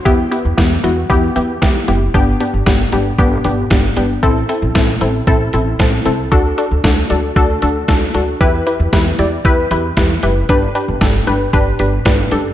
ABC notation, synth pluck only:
X:1
M:4/4
L:1/8
Q:1/4=115
K:Em
V:1 name="Synth pluck"
[B,EG] [B,EG] [B,EG] [B,EF] [B,EG] [B,EG] [B,EG] [B,EG] | [B,DG] [B,DG] [B,DG] [B,DG] [B,DG] [B,DG] [B,DG] [B,DG] | [CEA] [CEA] [CEA] [CEA] [CEA] [CEA] [CEA] [CEA] | [DFA] [DFA] [DFA] [DFA] [DFA] [DFA] [DFA] [DFA] |
[EGB] [EGB] [EGB] [EGd] [EGB] [EGB] [EGB] [EGB] | [DGB] [DGB] [DGA] [DGB] [DGB] [DGB] [DGB] [DGA] |]